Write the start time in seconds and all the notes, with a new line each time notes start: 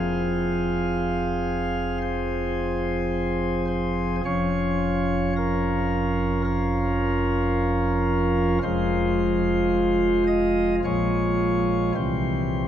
Already playing: F1 F2 F3 C4 G#4 F5
2.02 C5
3.67 C5
4.25 F1 F2 F3 C#4 F4 C#5
5.36 A#4
6.44 A#4
8.63 F1 F2 F3 G#3 F4 C5
10.27 D#5
10.84 A#1 A#2 F3 G#3 F4 C#5
11.95 C2 C3 E3 G3 C4 C5